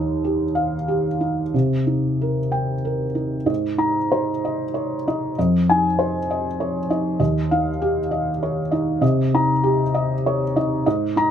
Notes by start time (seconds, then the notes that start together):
Already playing: D#2 D#4
0.24 G4
0.55 F5
0.88 G4
1.21 D#4
1.54 C3
1.87 D#4
2.21 A#4
2.52 G5
2.85 A#4
3.15 D#4
3.46 G#2 D#5
3.78 D#4 A#5
4.12 C5
4.45 D#5
4.74 C#5
5.08 D#4 D#5
5.38 F2 D#5
5.70 D#4 G#5
5.99 C5
6.30 D#5
6.60 C#5
6.90 D#4 D#5
7.20 D#2 D#5
7.51 D#4 F5
7.82 G4
8.11 D#5
8.43 C#5
8.71 D#4 D#5
9.01 C3 D#5
9.34 D#4 A#5
9.63 G4
9.95 D#5
10.26 C#5
10.56 D#4 D#5
10.86 G#2 D#5
11.16 D#4 A#5